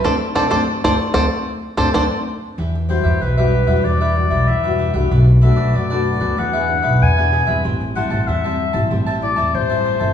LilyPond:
<<
  \new Staff \with { instrumentName = "Clarinet" } { \time 4/4 \key d \mixolydian \tempo 4 = 95 r1 | \key e \minor r8 c''8 b'4 d''4 e''8. r16 | r8 e''8 d''4 fis''4 gis''8. r16 | r8 fis''8 e''4 r8 d''8 c''4 | }
  \new Staff \with { instrumentName = "Cavaquinho" } { \time 4/4 \key d \mixolydian <a' c'' d''>16 r16 <a' c'' d''>16 <a' c'' d''>16 r16 <a' c'' d''>16 r16 <a' c'' d''>16 r8. <a' c'' d''>16 <a' c'' d''>16 r8. | \key e \minor <d' g' b' e''>16 r16 <d' g' b' e''>16 <g' b' e''>16 <d' g' b' e''>16 <g' b' e''>8 <g' b' e''>16 <d' g' b' e''>16 <g' b' e''>16 r16 <g' b' e''>8 <g' b' e''>16 <d' g' b' e''>16 <g' b' e''>16 | <d' a' b' d''>16 r16 <d' a' b' d''>16 <a' b' d''>16 <d' a' b' d''>16 <a' b' d''>8 <a' b' d''>16 <d' gis' b' e''>16 <gis' b' e''>16 r16 <gis' b' e''>8 <gis' b' e''>16 <d' gis' b' e''>16 <gis' b' e''>16 | <g' c'' e'' a''>16 r16 <g' c'' e'' a''>16 <c'' e'' a''>16 <g' c'' e'' a''>16 <c'' e'' a''>8 <c'' e'' a''>16 <g' c'' e'' a''>16 <c'' e'' a''>16 r16 <c'' e'' a''>8 <c'' e'' a''>16 <g' c'' e'' a''>16 <c'' e'' a''>16 | }
  \new Staff \with { instrumentName = "Five-string banjo" } { \time 4/4 \key d \mixolydian <a' c'' d''>16 r16 <a' c'' d''>16 <a' c'' d''>16 r16 <a' c'' d''>16 r16 <a' c'' d''>16 r8. <a' c'' d''>16 <a' c'' d''>16 r8. | \key e \minor r1 | r1 | r1 | }
  \new Staff \with { instrumentName = "Nylon-string guitar" } { \time 4/4 \key d \mixolydian << { <a c' d'>16 r16 <a c' d'>16 <a c' d'>16 r16 <a c' d'>16 r16 <a c' d'>16 r8. <a c' d'>16 <a c' d'>16 r8. | \key e \minor r8 <g d' fis'>8 r16 <g d' fis'>8 <g d' fis'>8. <g d' fis'>8 r16 <g d' fis'>8 <a d' fis'>16~ | <a d' fis'>8 <a d' fis'>8 r16 <a d' fis'>8 <b d' gis'>8. <b d' gis'>8. <b d' gis'>8 <g c' e'>16~ | <g c' e'>8 <g c' e'>8. <g c' e'>8 <g c' e'>8. <g c' e'>8. <g c' e'>8 <c' e' a'>16 | } \\ { r1 | e4 b,4 e4 b,4 | b,4 fis4 e4 b,4 | a,4 e4 a,4 e4 | } >> }
  \new Staff \with { instrumentName = "Upright bass" } { \clef bass \time 4/4 \key d \mixolydian d,16 r16 d,16 d,16 r16 d,16 r16 d,16 r8. d,16 d,16 r8. | \key e \minor e,8. e,16 b,,8. e,16 e,8. b,,16 e,8. c,16 | b,,8. b,,16 fis,8. d,16 e,8. b,,16 e,8. e,16 | a,,8. a,,16 e,8. a,,16 a,,8. e,16 a,,8. g,,16 | }
>>